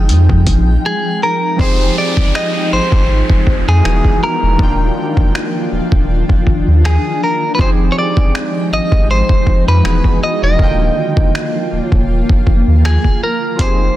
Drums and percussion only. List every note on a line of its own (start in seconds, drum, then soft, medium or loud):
0.09 closed hi-hat medium
0.29 kick loud
0.47 kick medium
0.47 closed hi-hat medium
1.59 kick loud
2.17 kick medium
2.35 finger snap loud
2.92 kick loud
3.30 kick loud
3.47 kick medium
3.85 finger snap loud
4.05 kick medium
4.59 kick loud
5.17 kick medium
5.35 finger snap loud
5.92 kick loud
6.29 kick medium
6.47 kick medium
6.85 finger snap loud
7.59 kick loud
8.17 kick medium
8.35 finger snap loud
8.92 kick loud
9.29 kick medium
9.47 kick medium
9.85 finger snap loud
10.04 kick medium
10.59 kick loud
11.17 kick medium
11.35 finger snap loud
11.92 kick loud
12.29 kick medium
12.47 kick medium
12.85 finger snap loud
13.04 kick medium
13.59 kick loud
13.59 closed hi-hat medium